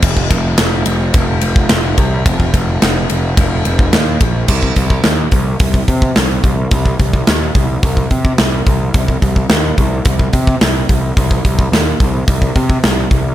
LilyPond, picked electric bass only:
\new Staff \with { instrumentName = "Picked electric bass" } { \clef bass \time 4/4 \key f \dorian \tempo 4 = 108 f,,8 f,,8 f,,8 f,,8 f,,8 f,,8 f,,8 c,8 | f,,8 f,,8 f,,8 f,,8 f,,8 f,,8 ees,8 bes,,8 | c,8 c,8 ees,8 c,8 c,8 c8 c,8 c,8 | c,8 c,8 ees,8 c,8 c,8 c8 c,8 c,8 |
c,8 c,8 ees,8 c,8 c,8 c8 c,8 c,8 | c,8 c,8 ees,8 c,8 c,8 c8 c,8 c,8 | }